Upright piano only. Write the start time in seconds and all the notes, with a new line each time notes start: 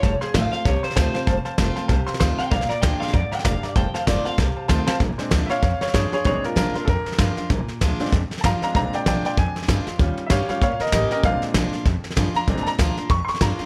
0.03 C5 F5 A5
0.21 C5 F5 C6
0.34 F5 A5
0.52 C5 F5 A5
0.65 C5 F5 A5
0.83 C5 F5 C6
0.96 C5 F5 A5
1.14 C5 F5 A5
1.27 C5 F5 A5
1.45 C5 F5 A5
1.58 C5 F5 A5
1.76 C5 F5 A5
1.88 C5 F5 A5
2.06 C5 F5 C6
2.20 C5 F5 C6
2.38 C5 F5 A5
2.51 D5 F5 A#5
2.69 D5 F5 A#5
2.82 D5 F5 A#5
3.00 D5 F5 C6
3.13 D5 F5 A#5
3.31 D5 F5 A#5
3.44 D5 F5 A#5
3.63 D5 F5 A#5
3.76 C5 F5 A5
3.94 C5 F5 A5
4.07 C5 F5 A5
4.25 C5 F5 A5
4.38 C5 F5 A5
4.57 C5 F5 A5
4.68 C5 F5 A5
4.87 C5 F5 A5
5.18 G#3 C4 D4
5.46 C#5 E5
5.51 F5
5.63 C#5 F5
5.81 C#5 F5
5.94 G#4 C#5
6.13 G#4 C#5
6.25 G#3 C4 D4 G#4 C#5
6.45 F4 A#4
6.57 F4 A#4
6.76 F4 A#4
6.85 A4
6.89 A#4
8.00 G#3 C4 D4
8.41 F5 A5
8.45 A#5
8.62 G#3 C4 D4 F5 A#5
8.74 G#3 C4 D4 F5 A#5
8.94 D5 G5
9.07 D5 G5
9.25 D5 G5
9.38 G#5
9.98 G3 C#4 F4
10.26 E5
10.30 C#5 F5
10.48 G3 C#4 F4 C#5 F5
10.62 C#5 F5
10.80 A#4 D#5
10.93 A#4 D#5
11.12 A#4 D#5
11.23 G#3 C4 D4 F5
12.36 A#5
12.47 G#3 C4 D4
12.63 A5
12.67 A#5
13.11 C#6
13.25 C6
13.29 C#6
13.42 A#5